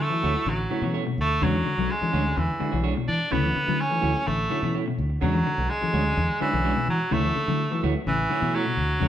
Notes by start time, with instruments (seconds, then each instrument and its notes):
0.00 baritone saxophone A3, muted clean electric guitar stroke
0.10 clean electric guitar E3, tine electric piano E3 F#3 A3 E4, muted clean electric guitar stroke
0.23 fingered electric bass D2, clean electric guitar A3 E4 F#4 C#5
0.35 muted clean electric guitar stroke
0.46 fingered electric bass A1, clean electric guitar D3, baritone saxophone F#3
0.59 muted clean electric guitar stroke
0.70 clean electric guitar D3 A3 E4 F#4 C#5, tine electric piano E3 F#3 A3 C#4
0.81 fingered electric bass B2, clean electric guitar E3 F#4 C#5, muted clean electric guitar stroke
0.94 clean electric guitar A3 E4 F#4 C#5
1.06 clean electric guitar B2, muted clean electric guitar stroke
1.18 fingered electric bass D2, baritone saxophone A3
1.30 muted clean electric guitar stroke
1.41 fingered electric bass E2, clean electric guitar C#3 G#3 D4 F#4 C#5, tine electric piano D3 F#3 G#3 C#4, baritone saxophone F#3
1.54 clean electric guitar E3
1.65 clean electric guitar D3, muted clean electric guitar stroke
1.78 fingered electric bass B1, tine electric piano D3 F#3 G#3 B3, clean electric guitar F#3, muted clean electric guitar stroke
1.89 baritone saxophone G#3, muted clean electric guitar stroke
2.01 tine electric piano D3 F#3 G#3 C#4, clean electric guitar E3, muted clean electric guitar stroke, muted fingered electric bass stroke
2.12 fingered electric bass D2, clean electric guitar G#3 D4 F#4 C#5
2.25 muted clean electric guitar stroke
2.37 fingered electric bass E2, clean electric guitar D3, baritone saxophone E3
2.49 muted clean electric guitar stroke
2.59 clean electric guitar D3 G#3 D4 F#4, tine electric piano D3 F#3 G#3 E4, muted fingered electric bass stroke
2.71 fingered electric bass B1, clean electric guitar E3 D4 F#4 C#5
2.83 clean electric guitar G#3 D4 F#4 C#5
2.95 clean electric guitar B2, muted clean electric guitar stroke
3.08 fingered electric bass E3, baritone saxophone D4
3.19 muted clean electric guitar stroke
3.31 fingered electric bass D2, clean electric guitar C#3 A3 E4 F#4 C#5, tine electric piano E3 F#3 A3 C#4, baritone saxophone B3
3.44 clean electric guitar E3
3.55 clean electric guitar D3, muted clean electric guitar stroke, muted fingered electric bass stroke
3.66 fingered electric bass D3, tine electric piano E3 F#3 A3 C#4, clean electric guitar F#3, muted clean electric guitar stroke
3.79 baritone saxophone C#4, muted clean electric guitar stroke
3.89 tine electric piano D3 E3 F#3 A3, clean electric guitar E3, muted clean electric guitar stroke
4.01 fingered electric bass D2, clean electric guitar A3 E4 F#4 C#5
4.14 muted clean electric guitar stroke
4.27 fingered electric bass A1, clean electric guitar D3, baritone saxophone A3
4.38 muted clean electric guitar stroke
4.50 clean electric guitar D3 A3 E4 F#4 C#5, tine electric piano E3 F#3 A3 C#4
4.62 fingered electric bass B2, clean electric guitar E3 E4 F#4 C#5
4.74 clean electric guitar A3 E4 C#5, muted clean electric guitar stroke
4.86 clean electric guitar B2, muted clean electric guitar stroke
4.98 fingered electric bass D2
5.10 muted clean electric guitar stroke
5.21 fingered electric bass E2, clean electric guitar C#3 G#3 D4 F#4 C#5, tine electric piano D3 F#3 G#3 C#4, baritone saxophone F#3
5.34 clean electric guitar E3
5.45 clean electric guitar D3, muted clean electric guitar stroke
5.58 fingered electric bass B1, tine electric piano D3 F#3 G#3 B3, muted clean electric guitar stroke
5.69 baritone saxophone G#3, muted clean electric guitar stroke
5.81 tine electric piano D3 F#3 G#3 C#4, clean electric guitar E3, muted clean electric guitar stroke, muted fingered electric bass stroke
5.93 fingered electric bass D2, clean electric guitar G#3 D4 F#4 C#5
6.05 muted clean electric guitar stroke
6.17 fingered electric bass E2, clean electric guitar D3
6.29 muted clean electric guitar stroke
6.40 clean electric guitar D3 G#3 D4 F#4 C#5, tine electric piano D3 F#3 G#3 C#4, baritone saxophone E3, muted fingered electric bass stroke
6.52 fingered electric bass B1, clean electric guitar E3 D4 F#4 C#5
6.64 clean electric guitar G#3 D4 F#4 C#5
6.75 clean electric guitar B2, muted clean electric guitar stroke
6.88 fingered electric bass E3, baritone saxophone F#3
6.99 muted clean electric guitar stroke
7.11 fingered electric bass D2, clean electric guitar C#3 A3 E4 F#4 C#5, tine electric piano E3 F#3 A3 C#4, baritone saxophone A3
7.24 clean electric guitar E3
7.34 clean electric guitar D3, muted clean electric guitar stroke
7.47 fingered electric bass D3, tine electric piano E3 F#3 A3 B3, clean electric guitar F#3, muted clean electric guitar stroke
7.60 muted clean electric guitar stroke
7.71 tine electric piano E3 F#3 A3 B3, clean electric guitar E3, muted clean electric guitar stroke
7.83 fingered electric bass D2, clean electric guitar A3 E4 F#4 C#5
7.95 muted clean electric guitar stroke
8.07 fingered electric bass A1, clean electric guitar C#3, baritone saxophone E3
8.18 muted clean electric guitar stroke
8.30 clean electric guitar D3 A3 E4 F#4 C#5, tine electric piano E3 F#3 A3 B3
8.41 fingered electric bass B2, clean electric guitar E3 E4 F#4 C#5
8.54 baritone saxophone F#3, clean electric guitar A3 E4 F#4 C#5
8.66 clean electric guitar B2, muted clean electric guitar stroke
8.77 fingered electric bass D2
8.91 muted clean electric guitar stroke
9.00 fingered electric bass E2, clean electric guitar C#3 G#3 D4 F#4 C#5, tine electric piano D3 F#3 G#3 C#4